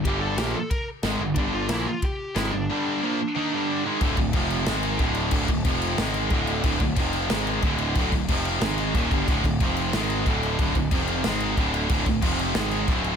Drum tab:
CC |--------|--------|--------|xxxxxxxx|
RD |b-b-b-b-|b-b-b-b-|--------|--------|
SD |--o---o-|--o---o-|--------|----o---|
BD |o---o---|o---o---|--------|ooo---o-|

CC |xxxxxxxx|xxxxxxxx|xxxxxxxx|xxxxxxxx|
RD |--------|--------|--------|--------|
SD |----o---|----o---|----o---|----o---|
BD |ooo---o-|ooo---o-|ooo---oo|ooo---o-|

CC |xxxxxxxx|xxxxxxxx|
RD |--------|--------|
SD |----o---|----o---|
BD |ooo---o-|ooo---o-|